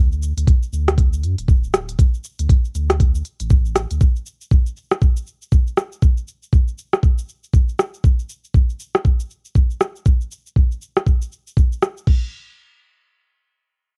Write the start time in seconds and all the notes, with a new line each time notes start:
Already playing: D2
0.12 cabasa
0.23 cabasa
0.37 D2, closed hi-hat, cabasa
0.47 kick, closed hi-hat, cabasa
0.63 cabasa
0.73 D2, cabasa
0.88 cross-stick, closed hi-hat, cabasa
0.98 kick, closed hi-hat, cabasa
1.13 cabasa
1.23 F#2, closed hi-hat, cabasa
1.38 D1, closed hi-hat, cabasa
1.48 kick, cabasa
1.64 cabasa
1.74 cross-stick, closed hi-hat, cabasa
1.89 closed hi-hat, cabasa
1.99 kick, closed hi-hat, cabasa
2.14 cabasa
2.24 cabasa
2.39 D2, closed hi-hat, cabasa
2.49 kick, closed hi-hat, cabasa
2.65 cabasa
2.75 D2, closed hi-hat, cabasa
2.90 cross-stick, closed hi-hat, cabasa
3.00 kick, closed hi-hat, cabasa
3.15 cabasa
3.25 closed hi-hat, cabasa
3.40 A1, closed hi-hat, cabasa
3.50 kick, cabasa
3.65 cabasa
3.76 cross-stick, closed hi-hat, cabasa
3.91 D2, closed hi-hat, cabasa
4.01 kick, cabasa
4.16 cabasa
4.26 cabasa
4.41 cabasa
4.51 kick, cabasa
4.66 cabasa
4.77 cabasa
4.91 cross-stick, cabasa
5.02 kick, cabasa
5.17 cabasa
5.27 cabasa
5.42 cabasa
5.52 kick, cabasa
5.67 cabasa
5.77 cross-stick, cabasa
5.92 cabasa
6.02 kick, cabasa
6.17 cabasa
6.28 cabasa
6.43 cabasa
6.53 kick, cabasa
6.68 cabasa
6.78 cabasa
6.93 cross-stick, cabasa
7.03 kick, cabasa
7.18 cabasa
7.29 cabasa
7.44 cabasa
7.54 kick, cabasa
7.69 cabasa
7.79 cross-stick, cabasa
7.94 cabasa
8.04 kick, cabasa
8.19 cabasa
8.29 cabasa
8.44 cabasa
8.54 kick, cabasa
8.70 cabasa
8.80 cabasa
8.95 cross-stick, cabasa
9.05 kick, cabasa
9.20 cabasa
9.30 cabasa
9.45 cabasa
9.55 kick, cabasa
9.70 cabasa
9.81 cross-stick, cabasa
9.96 cabasa
10.06 kick, cabasa
10.21 cabasa
10.31 cabasa
10.46 cabasa
10.56 kick, cabasa
10.71 cabasa
10.82 cabasa
10.97 cross-stick, cabasa
11.06 kick, cabasa
11.22 cabasa
11.32 cabasa
11.47 cabasa
11.57 kick, cabasa
11.72 cabasa
11.82 cross-stick, cabasa
11.97 cabasa
12.07 kick, crash